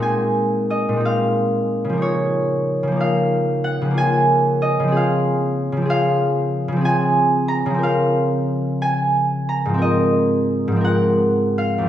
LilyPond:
<<
  \new Staff \with { instrumentName = "Harp" } { \time 6/8 \key des \major \tempo 4. = 61 <des'' f'' aes''>4 ees''8 f''4. | des''4. f''4 ges''8 | aes''4 ees''8 f''4. | f''4. aes''4 bes''8 |
f''4. aes''4 bes''8 | ees''4. ges''4 f''8 | }
  \new Staff \with { instrumentName = "Harp" } { \time 6/8 \key des \major <bes, aes c' ees'>4. <bes, aes c' ees'>4. | <des f bes ees'>4. <des f bes ees'>4. | <des f bes f'>4. <des f c' aes'>4. | <des f c' aes'>4. <des f c' aes'>4. |
<des f c' bes'>2. | <aes, f c' bes'>4. <aes, f c' bes'>4. | }
>>